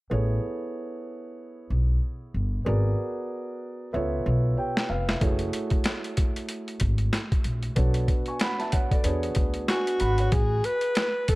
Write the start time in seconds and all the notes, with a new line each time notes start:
0.10 A1 B3 E4 G#4 A4 C#5
1.70 B1
2.34 G1
2.65 G#1 B3 F#4 G#4 A#4 D5
3.93 C#2 B3 F4 A4 C#5 E5
4.26 B1
4.58 G4 C#5 G5
4.77 snare
4.89 F1 B4 F5
5.08 E5, snare
5.21 F#1 A3 E4 F#4 G#4 C#5, kick, closed hi-hat
5.39 closed hi-hat
5.53 closed hi-hat
5.70 kick, closed hi-hat
5.84 snare, closed hi-hat
6.04 closed hi-hat
6.17 kick, closed hi-hat
6.36 closed hi-hat
6.49 closed hi-hat
6.68 closed hi-hat
6.80 G#1, kick, closed hi-hat
6.98 closed hi-hat
7.13 snare, closed hi-hat
7.32 kick, closed hi-hat
7.44 A#1, closed hi-hat
7.63 closed hi-hat
7.76 B1 B3 D4 F#4 A4 C#5, kick, closed hi-hat
7.94 closed hi-hat
8.08 kick, closed hi-hat
8.26 G#5 C#6, closed hi-hat
8.39 F#5 B5, snare, closed hi-hat
8.59 E5 A5, snare, closed hi-hat
8.72 C#5 F#5, kick, closed hi-hat
8.91 A4 D5, kick, closed hi-hat
9.04 E2 B3 D4 F#4 G#4 C#5, closed hi-hat
9.23 closed hi-hat
9.35 D2, kick, closed hi-hat
9.54 closed hi-hat
9.68 F#4 G#5 C#6, snare, closed hi-hat
9.87 closed hi-hat
10.00 G#1 F#5 B5, closed hi-hat
10.18 C#5 F#5, closed hi-hat
10.32 A1 G#4, kick, closed hi-hat
10.64 B4, closed hi-hat
10.81 closed hi-hat
10.95 snare, closed hi-hat
11.28 A4, kick, closed hi-hat